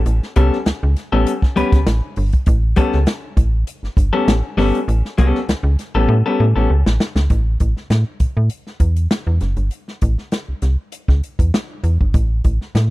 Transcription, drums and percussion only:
0.06 closed hi-hat medium
0.23 snare soft
0.36 kick medium
0.36 closed hi-hat medium
0.53 snare soft
0.66 snare medium
0.66 closed hi-hat medium
0.97 snare soft
0.97 closed hi-hat medium
1.26 closed hi-hat loud
1.42 kick medium
1.42 snare soft
1.57 closed hi-hat medium
1.72 kick loud
1.72 snare soft
1.72 closed hi-hat medium
1.87 snare loud
1.87 closed hi-hat medium
2.16 open hi-hat medium
2.33 kick medium
2.33 closed hi-hat soft
2.46 kick loud
2.46 closed hi-hat medium
2.76 kick medium
2.76 closed hi-hat medium
2.92 snare soft
3.06 snare medium
3.06 closed hi-hat medium
3.37 kick medium
3.37 closed hi-hat medium
3.67 closed hi-hat loud
3.84 snare soft
3.97 kick medium
3.97 closed hi-hat medium
4.28 snare loud
4.28 closed hi-hat medium
4.58 snare soft
4.58 open hi-hat medium
4.75 closed hi-hat soft
4.89 closed hi-hat medium
5.05 snare soft
5.18 kick medium
5.18 closed hi-hat medium
5.35 snare soft
5.49 snare medium
5.49 closed hi-hat medium
5.79 snare soft
5.79 closed hi-hat medium
6.86 snare medium
7.00 snare loud
7.16 snare medium
7.30 kick loud
7.30 closed hi-hat medium
7.60 kick medium
7.60 closed hi-hat medium
7.77 snare soft
7.90 snare medium
7.90 closed hi-hat medium
8.20 kick medium
8.20 closed hi-hat medium
8.50 closed hi-hat medium
8.67 snare soft
8.80 kick medium
8.80 closed hi-hat medium
8.96 closed hi-hat medium
9.11 snare loud
9.11 closed hi-hat medium
9.41 snare soft
9.41 closed hi-hat medium
9.57 closed hi-hat soft
9.71 closed hi-hat medium
9.88 snare soft
10.02 kick medium
10.02 closed hi-hat medium
10.18 snare soft
10.32 snare medium
10.32 closed hi-hat medium
10.62 snare soft
10.62 closed hi-hat medium
10.92 closed hi-hat medium
11.08 kick medium
11.08 snare soft
11.23 closed hi-hat medium
11.39 kick medium
11.39 closed hi-hat medium
11.54 snare loud
11.54 closed hi-hat medium
11.84 closed hi-hat medium
12.01 kick medium
12.14 kick loud
12.14 closed hi-hat medium
12.44 kick medium
12.44 closed hi-hat medium
12.61 snare soft
12.75 snare medium
12.75 closed hi-hat medium

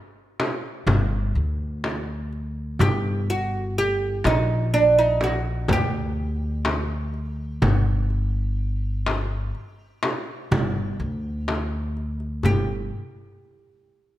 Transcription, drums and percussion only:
0.40 darbuka tek medium
0.40 frame drum medium
0.87 frame drum medium
0.87 darbuka dum medium
1.84 darbuka tek medium
1.84 frame drum medium
2.33 darbuka ka soft
2.79 frame drum medium
2.79 darbuka dum loud
4.24 darbuka tek medium
4.24 frame drum medium
5.21 frame drum medium
5.68 darbuka dum medium
5.68 frame drum medium
6.65 darbuka tek medium
6.65 frame drum medium
7.14 darbuka ka soft
7.62 darbuka dum medium
7.62 frame drum medium
8.10 darbuka ka soft
9.06 darbuka tek medium
9.06 frame drum medium
9.55 darbuka ka soft
10.03 darbuka tek medium
10.03 frame drum medium
10.52 frame drum loud
10.52 darbuka dum medium
11.01 darbuka ka soft
11.48 darbuka tek medium
11.48 frame drum medium
11.97 darbuka ka soft
12.20 darbuka ka soft
12.43 darbuka dum medium
12.43 frame drum medium

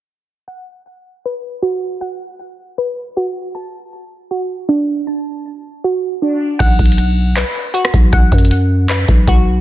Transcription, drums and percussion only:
6.60 kick loud
6.60 closed hi-hat medium
6.60 crash loud
6.79 kick loud
6.79 closed hi-hat medium
6.85 closed hi-hat medium
6.92 closed hi-hat soft
6.98 closed hi-hat medium
7.36 cross-stick medium
7.36 clap loud
7.36 closed hi-hat medium
7.75 closed hi-hat medium
7.85 cross-stick loud
7.94 kick loud
7.94 closed hi-hat medium
8.13 kick loud
8.13 closed hi-hat medium
8.32 kick loud
8.32 closed hi-hat medium
8.38 closed hi-hat medium
8.45 closed hi-hat medium
8.51 closed hi-hat medium
8.89 clap loud
8.89 closed hi-hat medium
9.08 kick loud
9.08 closed hi-hat medium
9.27 kick loud
9.27 closed hi-hat medium

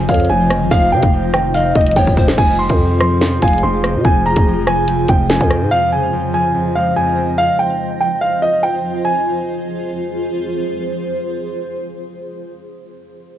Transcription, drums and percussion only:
0.09 kick medium
0.09 closed hi-hat medium
0.14 closed hi-hat medium
0.20 closed hi-hat medium
0.25 closed hi-hat soft
0.50 cross-stick loud
0.50 closed hi-hat medium
0.71 kick loud
0.71 closed hi-hat medium
1.03 kick loud
1.03 closed hi-hat medium
1.34 cross-stick loud
1.34 closed hi-hat medium
1.54 closed hi-hat medium
1.75 kick loud
1.75 closed hi-hat soft
1.81 closed hi-hat medium
1.86 closed hi-hat medium
1.91 closed hi-hat medium
1.96 kick medium
1.96 closed hi-hat medium
2.07 kick medium
2.17 kick medium
2.17 open hi-hat medium
2.28 snare loud
2.38 kick loud
2.38 crash medium
2.69 kick loud
2.69 closed hi-hat medium
3.00 cross-stick loud
3.00 closed hi-hat medium
3.21 snare loud
3.21 closed hi-hat medium
3.42 kick medium
3.42 closed hi-hat medium
3.48 closed hi-hat medium
3.53 closed hi-hat medium
3.58 closed hi-hat soft
3.84 cross-stick loud
3.84 closed hi-hat medium
4.05 kick loud
4.05 closed hi-hat medium
4.36 kick loud
4.36 closed hi-hat medium
4.67 cross-stick loud
4.67 closed hi-hat medium
4.88 closed hi-hat medium
5.08 kick medium
5.08 closed hi-hat medium
5.30 snare loud
5.30 closed hi-hat medium
5.41 kick loud
5.50 cross-stick medium
5.50 closed hi-hat medium

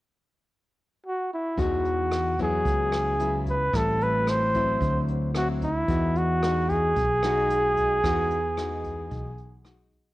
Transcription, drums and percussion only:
1.57 kick medium
1.57 closed hi-hat soft
1.85 closed hi-hat soft
2.11 cross-stick medium
2.11 closed hi-hat soft
2.38 kick soft
2.38 closed hi-hat soft
2.65 kick medium
2.65 closed hi-hat soft
2.92 cross-stick medium
2.92 closed hi-hat soft
3.19 closed hi-hat soft
3.46 kick soft
3.46 closed hi-hat soft
3.73 kick medium
3.73 cross-stick medium
3.73 closed hi-hat soft
4.01 closed hi-hat soft
4.27 cross-stick medium
4.27 closed hi-hat soft
4.54 kick soft
4.54 closed hi-hat soft
4.81 kick medium
4.81 closed hi-hat soft
5.08 closed hi-hat soft
5.34 cross-stick medium
5.34 closed hi-hat soft
5.61 kick soft
5.61 closed hi-hat soft
5.88 kick medium
5.88 closed hi-hat soft
6.15 closed hi-hat soft
6.43 cross-stick medium
6.43 closed hi-hat soft
6.69 kick soft
6.69 closed hi-hat soft
6.96 kick medium
6.96 closed hi-hat soft
7.23 cross-stick medium
7.23 closed hi-hat soft
7.50 closed hi-hat soft
7.77 kick soft
7.77 closed hi-hat soft
8.04 kick medium
8.04 cross-stick medium
8.04 closed hi-hat soft
8.30 closed hi-hat soft
8.57 cross-stick medium
8.57 closed hi-hat soft
8.84 kick soft
8.84 closed hi-hat soft
9.11 kick medium
9.11 closed hi-hat soft
9.38 closed hi-hat soft
9.65 cross-stick medium
9.65 closed hi-hat soft
9.92 kick soft
9.92 closed hi-hat soft

